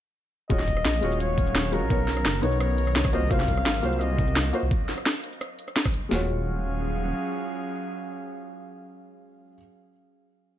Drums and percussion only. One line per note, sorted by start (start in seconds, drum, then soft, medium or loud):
0.50 kick loud
0.50 closed hi-hat loud
0.50 shaker soft
0.59 snare soft
0.68 kick medium
0.68 closed hi-hat medium
0.77 cross-stick soft
0.85 snare loud
0.85 closed hi-hat medium
0.85 shaker soft
1.03 closed hi-hat medium
1.03 shaker soft
1.12 shaker medium
1.20 closed hi-hat loud
1.20 shaker medium
1.38 kick loud
1.38 closed hi-hat medium
1.47 shaker medium
1.55 snare loud
1.55 closed hi-hat medium
1.55 shaker soft
1.64 shaker soft
1.73 closed hi-hat medium
1.90 kick loud
1.90 closed hi-hat medium
1.90 shaker soft
2.08 snare soft
2.08 closed hi-hat medium
2.17 cross-stick soft
2.25 snare loud
2.25 closed hi-hat medium
2.25 shaker soft
2.43 closed hi-hat medium
2.43 shaker soft
2.52 shaker medium
2.60 cross-stick medium
2.60 closed hi-hat medium
2.60 shaker soft
2.78 closed hi-hat medium
2.87 cross-stick soft
2.87 shaker medium
2.96 snare loud
2.96 closed hi-hat loud
2.96 shaker soft
3.05 kick loud
3.05 cross-stick medium
3.05 shaker soft
3.13 closed hi-hat medium
3.31 kick loud
3.31 closed hi-hat medium
3.31 shaker soft
3.40 snare soft
3.48 kick medium
3.48 closed hi-hat medium
3.57 cross-stick soft
3.66 snare loud
3.66 closed hi-hat medium
3.66 shaker soft
3.83 closed hi-hat medium
3.83 shaker soft
3.93 shaker medium
4.01 closed hi-hat medium
4.01 shaker soft
4.18 kick loud
4.18 closed hi-hat medium
4.27 shaker medium
4.36 snare loud
4.36 closed hi-hat medium
4.36 shaker soft
4.45 shaker soft
4.54 closed hi-hat medium
4.71 kick loud
4.71 closed hi-hat medium
4.71 shaker soft
4.89 snare soft
4.89 closed hi-hat medium
4.98 cross-stick soft
5.06 snare loud
5.06 closed hi-hat medium
5.06 shaker soft
5.24 closed hi-hat medium
5.24 shaker soft
5.33 shaker medium
5.41 cross-stick medium
5.41 closed hi-hat medium
5.41 shaker soft
5.59 closed hi-hat medium
5.68 cross-stick soft
5.68 shaker medium
5.76 snare loud
5.76 closed hi-hat medium
5.76 shaker soft
5.86 kick loud
5.86 cross-stick medium
5.86 shaker soft
5.94 closed hi-hat medium
6.11 snare loud